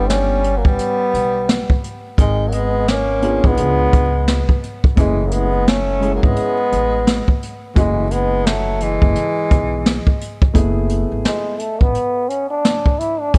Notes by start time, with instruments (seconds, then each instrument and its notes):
Already playing: upright bass G1, trombone B3, grand piano B3 D4 E4 A4
0.08 tenor saxophone G3, trombone C#4, snare, closed hi-hat
0.44 closed hi-hat
0.56 tenor saxophone F#3, trombone A#3
0.65 upright bass A1, tenor saxophone G3, trombone B3, kick
0.79 closed hi-hat
1.14 upright bass B1, closed hi-hat
1.49 snare, closed hi-hat
1.70 kick
1.84 closed hi-hat
2.18 upright bass G#1, tenor saxophone D#3, trombone G#3, kick, closed hi-hat
2.47 tenor saxophone F#3, trombone A#3
2.52 tenor saxophone G#3, trombone B3, closed hi-hat
2.88 tenor saxophone A#3, trombone C#4, snare, closed hi-hat
3.22 grand piano B3 D4 F4 G#4, closed hi-hat
3.44 upright bass G#1, tenor saxophone G#3, trombone B3, kick
3.57 upright bass C#2, grand piano B3 D4 F4 G#4, closed hi-hat
3.93 upright bass C#2, kick, closed hi-hat
4.28 snare, closed hi-hat
4.49 kick
4.63 closed hi-hat
4.84 kick
4.96 upright bass F#1, tenor saxophone E3, trombone G#3, grand piano A3 C#4 E4 G#4, kick, closed hi-hat
5.27 tenor saxophone F#3, trombone A#3
5.31 tenor saxophone G#3, trombone B3, closed hi-hat
5.67 tenor saxophone A3, trombone C#4, snare, closed hi-hat
6.00 grand piano G#3 C#4 E4 G#4, closed hi-hat
6.15 tenor saxophone F#3, trombone A#3
6.23 upright bass G#1, tenor saxophone G#3, trombone B3, kick
6.36 closed hi-hat
6.72 upright bass A1, closed hi-hat
7.07 snare, closed hi-hat
7.28 kick
7.43 closed hi-hat
7.75 upright bass F#1, tenor saxophone E3, trombone G#3, grand piano A3 C#4 E4 F#4, kick, closed hi-hat
8.11 tenor saxophone G#3, trombone B3, closed hi-hat
8.46 tenor saxophone F#3, trombone A3, snare, closed hi-hat
8.80 tenor saxophone E3, trombone G#3, closed hi-hat
9.02 upright bass F#1, kick
9.15 closed hi-hat
9.51 upright bass B1, kick, closed hi-hat
9.86 snare, closed hi-hat
10.07 kick
10.21 closed hi-hat
10.42 kick
10.54 upright bass F#1, grand piano A3 B3 E4 G#4, kick, closed hi-hat
10.89 closed hi-hat
11.12 upright bass G#1
11.25 trombone G#3, snare, closed hi-hat
11.59 trombone A3, closed hi-hat
11.81 upright bass A1, trombone B3, kick
11.95 closed hi-hat
12.29 trombone C#4, closed hi-hat
12.50 trombone D4
12.65 snare, closed hi-hat
12.86 kick
12.99 trombone E4, closed hi-hat
13.20 trombone D4
13.34 upright bass B1, trombone C#4, kick, closed hi-hat